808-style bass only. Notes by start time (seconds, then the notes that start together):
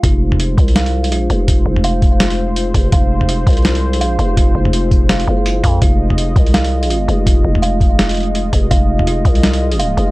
0.03 F1
0.58 C2
1.08 B1
1.30 F1
1.66 F1
2.74 F1
2.92 F1
3.47 C2
3.97 B1
4.19 F1
4.55 F1
5.28 F#1
5.64 F2
5.82 F1
6.36 C2
7.08 F1
7.45 F1
8.53 F1
8.71 F1
9.25 C2
9.97 F1